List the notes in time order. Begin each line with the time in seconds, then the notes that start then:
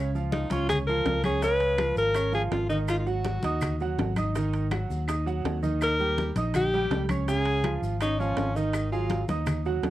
Already playing: C#2
0.14 F3 F4 F5, high conga, maracas
0.32 D#4, high bongo, high conga, high timbale, low timbale, maracas
0.50 C#2 C#4 F4 C#5 C#6, high conga, high timbale, maracas
0.69 G#4, high bongo, high conga, low conga, high timbale, claves, maracas
0.87 F3 F4 A#4 F5, high bongo, high conga, maracas
1.05 C#2, high bongo, low bongo, high conga, high timbale, low timbale, maracas
1.24 C#4 G#4 C#5 C#6, high bongo, high conga, high timbale, claves, maracas
1.42 C#3 C#4 B4 C#5, high bongo, high conga, high timbale, maracas
1.60 high conga, high timbale, maracas
1.78 F3 F4 F5, high bongo, high conga, high timbale, low timbale, claves, maracas
1.96 G#1 A#4, high bongo, high conga, maracas
2.15 C#4 C#5 C#6, high bongo, high conga, high timbale, claves, maracas
2.32 F3 F4 G#4 F5, high bongo, high conga, maracas
2.51 G#1 F4, high bongo, low bongo, high conga, high timbale, low timbale, maracas
2.70 D#3 D#4 D#5, high bongo, maracas
2.88 F4, high bongo, high conga, high timbale, claves, maracas
2.99 F4
3.06 F#3 F#4 F#5, high conga, maracas
3.24 high bongo, high conga, high timbale, low timbale, maracas
3.43 D#2 D#4 D#5 D#6, high bongo, high conga, high timbale, maracas
3.61 high bongo, high conga, low conga, high timbale, claves, maracas
3.80 F#3 F#4 F#5, high bongo, high conga, maracas
3.98 G#1, high bongo, low bongo, high conga, high timbale, low timbale, maracas
4.16 D#4 D#5 D#6, high bongo, high conga, high timbale, claves, maracas
4.35 D#3 D#4 D#5, high bongo, high conga, high timbale, maracas
4.54 high timbale, maracas
4.71 F#3 F#4 F#5, high bongo, high conga, high timbale, low timbale, claves, maracas
4.90 D#2, high bongo, high conga, maracas
5.07 D#4 D#5 D#6, high bongo, high conga, high timbale, claves, maracas
5.26 F#3 F#4 F#5, high bongo, high conga, maracas
5.44 D#2, high bongo, low bongo, high conga, high timbale, low timbale, maracas
5.62 D#3 D#4 D#5, high bongo, high conga, maracas
5.81 A#4, high bongo, high conga, high timbale, claves, maracas
5.99 G3 G4 G5, high conga, maracas
6.18 high bongo, high conga, high timbale, low timbale, maracas
6.36 A#1 D#4 D#5 D#6, high bongo, high conga, high timbale, maracas
6.54 G4, high bongo, high conga, low conga, high timbale, claves, maracas
6.73 G3 G4 G5, high bongo, high conga, maracas
6.90 C#2, high bongo, low bongo, high conga, high timbale, low timbale, maracas
7.09 C#4 C#5 C#6, high bongo, high conga, high timbale, claves, maracas
7.28 C#3 C#4 G#4 C#5, high bongo, high conga, high timbale, maracas
7.45 high conga, high timbale, maracas
7.64 F3 F4 F5, high bongo, high conga, high timbale, low timbale, claves, maracas
7.82 G#1, high bongo, high conga, maracas
8.01 C#4 D#4 C#5 C#6, high bongo, high conga, high timbale, claves, maracas
8.19 F3 C#4 F4 F5, high bongo, high conga, maracas
8.37 G#1, high bongo, low bongo, high conga, high timbale, low timbale, maracas
8.56 D#3 D#4 D#5, high bongo, maracas
8.73 high bongo, high conga, high timbale, claves, maracas
8.92 F#3 F4 G#4 F5, high conga, maracas
9.10 high bongo, high conga, high timbale, low timbale, maracas
9.28 D#2 D#4 D#5 D#6, high bongo, high conga, high timbale, maracas
9.46 high bongo, high conga, low conga, high timbale, claves, maracas
9.65 F#3 F#4 F#5, high bongo, high conga, maracas
9.83 D#2, high bongo, low bongo, high conga, high timbale, low timbale, maracas